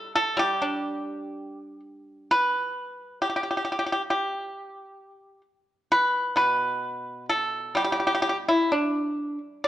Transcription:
0.00 0.36 G3 medium
0.00 0.12 A4 medium
0.16 0.37 A4 medium
0.37 3.23 G3 medium
0.37 1.80 G4 medium
0.62 2.55 D4 medium
2.31 3.20 B4 medium
3.22 3.28 G4 medium
3.29 3.35 G4 soft
3.36 3.42 G4 soft
3.43 3.49 G4 soft
3.51 3.56 G4 soft
3.57 3.63 G4 soft
3.65 3.71 G4 soft
3.72 3.78 G4 soft
3.79 3.85 G4 soft
3.86 3.91 G4 soft
3.92 4.01 G4 soft
4.10 5.41 G4 medium
5.92 6.34 B4 medium
6.36 9.17 B2 soft
6.36 7.25 B4 medium
7.30 7.73 A4 medium
7.75 9.68 G3 medium
7.75 7.83 G4 medium
7.84 7.91 G4 medium
7.92 7.99 G4 medium
8.00 8.06 G4 medium
8.07 8.13 G4 medium
8.15 8.21 G4 medium
8.22 8.28 G4 medium
8.29 8.36 G4 medium
8.48 8.70 E4 medium
8.72 9.38 D4 medium
9.64 9.68 D5 medium

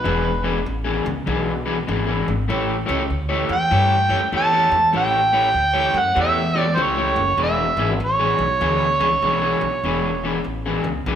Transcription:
0.00 0.29 E3 medium
0.00 0.64 B4 medium
0.04 0.62 E1 medium
0.04 0.30 B3 medium
0.04 0.30 D4 medium
0.04 0.30 G#4 medium
0.43 0.58 E3 medium
0.43 0.58 B3 medium
0.43 0.58 D4 medium
0.43 0.58 G#4 medium
0.66 1.02 A1 medium
0.84 1.08 E3 medium
0.84 1.08 B3 medium
0.84 1.08 D4 medium
0.84 1.08 G#4 medium
1.06 1.26 C#2 medium
1.26 1.84 B1 medium
1.26 1.52 E3 medium
1.26 1.52 B3 medium
1.26 1.52 D4 medium
1.26 1.52 G#4 medium
1.66 1.77 E3 medium
1.66 1.77 B3 medium
1.66 1.77 D4 medium
1.66 1.77 G#4 medium
1.79 muted clean electric guitar stroke soft
1.88 2.24 G#1 medium
1.88 2.07 E3 medium
1.88 2.07 B3 medium
1.88 2.06 D4 medium
1.88 2.05 G#4 medium
2.07 2.31 E3 medium
2.07 2.31 B3 medium
2.07 2.30 D4 medium
2.07 2.30 G#4 medium
2.28 2.48 G#1 medium
2.48 2.85 A1 medium
2.48 2.74 A3 medium
2.48 2.74 E4 medium
2.48 2.75 G4 medium
2.48 2.75 C#5 medium
2.86 3.09 C#2 medium
2.86 3.01 A3 medium
2.86 3.02 E4 medium
2.86 3.02 G4 medium
2.86 3.02 C#5 medium
3.10 3.46 D2 medium
3.29 3.53 A3 medium
3.29 3.53 E4 medium
3.29 3.52 G4 medium
3.29 3.52 C#5 medium
3.49 3.70 E2 medium
3.49 4.30 G5 loud
3.71 4.07 G2 medium
3.71 3.97 A3 medium
3.71 3.97 E4 medium
3.71 3.97 G4 medium
3.71 3.97 C#5 medium
4.09 4.31 F#2 medium
4.09 4.21 A3 medium
4.09 4.21 E4 medium
4.09 4.21 G4 medium
4.09 4.20 C#5 medium
4.22 muted clean electric guitar stroke soft
4.32 4.68 E2 medium
4.32 4.52 A3 medium
4.32 4.52 E4 medium
4.32 4.51 G4 medium
4.32 4.52 C#5 medium
4.36 4.92 A5 loud
4.53 4.76 A3 medium
4.53 4.75 E4 medium
4.53 4.75 G4 medium
4.53 4.75 C#5 medium
4.71 4.92 E2 medium
4.93 5.51 A1 medium
4.93 5.19 A3 medium
4.93 5.19 E4 medium
4.93 5.19 G4 medium
4.93 5.20 C#5 medium
4.98 6.00 G5 loud
5.33 5.47 A3 medium
5.33 5.48 E4 medium
5.33 5.48 G4 medium
5.33 5.48 C#5 medium
5.54 5.90 D2 medium
5.74 5.97 A3 medium
5.74 5.97 E4 medium
5.74 5.97 G4 medium
5.74 5.97 C#5 medium
5.94 6.14 F#2 medium
5.98 6.18 F#5 medium
6.15 6.73 E2 medium
6.15 6.41 A3 medium
6.15 6.41 E4 medium
6.15 6.41 G4 medium
6.15 6.41 C#5 medium
6.21 6.59 E5 medium
6.55 6.66 A3 medium
6.55 6.66 E4 medium
6.55 6.66 G4 medium
6.55 6.65 C#5 medium
6.59 6.77 D5 medium
6.66 muted clean electric guitar stroke soft
6.75 7.13 C#2 medium
6.75 6.96 A3 medium
6.75 6.97 E4 medium
6.75 6.97 G4 medium
6.75 6.84 C5 medium
6.75 6.97 C#5 medium
6.83 7.41 C#5 medium
6.98 7.20 A3 medium
6.98 7.21 E4 medium
6.98 7.20 G4 medium
6.98 7.20 C#5 medium
7.16 7.37 F#1 medium
7.37 7.74 E1 medium
7.37 7.64 E3 medium
7.37 7.64 B3 medium
7.37 7.64 D4 medium
7.37 7.64 G#4 medium
7.43 7.98 E5 medium
7.77 7.98 G#1 medium
7.77 7.92 E3 medium
7.77 7.92 B3 medium
7.77 7.93 D4 medium
7.77 7.93 G#4 medium
8.00 8.36 A1 medium
8.04 10.43 C#5 medium
8.19 8.43 E3 medium
8.19 8.42 B3 medium
8.19 8.42 D4 medium
8.19 8.42 G#4 medium
8.38 8.59 B1 medium
8.61 8.97 D2 medium
8.61 8.86 E3 medium
8.61 8.86 B3 medium
8.61 8.87 D4 loud
8.61 8.87 G#4 medium
9.00 9.21 C#2 medium
9.00 9.11 E3 medium
9.00 9.10 B3 medium
9.00 9.10 D4 medium
9.00 9.10 G#4 medium
9.11 muted clean electric guitar stroke soft
9.22 9.58 B1 medium
9.22 9.42 E3 medium
9.22 9.41 B3 medium
9.22 9.41 D4 medium
9.22 9.40 G#4 medium
9.42 9.65 E3 medium
9.42 9.65 B3 medium
9.42 9.65 D4 medium
9.42 9.64 G#4 medium
9.61 9.82 B1 medium
9.84 10.41 E1 medium
9.84 10.10 E3 medium
9.84 10.09 B3 medium
9.84 10.10 D4 medium
9.84 10.10 G#4 medium
10.24 10.38 E3 medium
10.24 10.38 B3 medium
10.24 10.38 D4 medium
10.24 10.38 G#4 medium
10.44 10.80 A1 medium
10.66 10.88 E3 medium
10.66 10.88 B3 medium
10.66 10.88 D4 medium
10.66 10.88 G#4 medium
10.84 11.04 C#2 medium
11.06 11.15 B1 medium
11.06 11.15 E3 medium
11.06 11.15 B3 medium
11.06 11.15 D4 medium
11.06 11.15 G#4 loud

